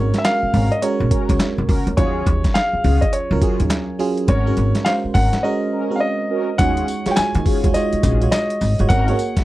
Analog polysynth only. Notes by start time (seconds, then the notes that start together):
0.53 C#4 F#4 A#4
1.11 C#4 F#4 A#4
1.68 C#4 F#4 A#4
1.97 C#4 F4 F#4 G#4
2.83 C#4 F4 F#4 G#4
3.41 C#4 F4 F#4 G#4
4.28 C#4 F#4 A#4
5.15 C#4 F#4 A#4
5.72 C#4 F#4 A#4
6.30 C#4 F#4 A#4
6.59 C#4 F4 F#4 G#4
7.45 C#4 F4 F#4 G#4
8.03 C#4 F4 F#4 G#4
8.90 C#4 F#4 A#4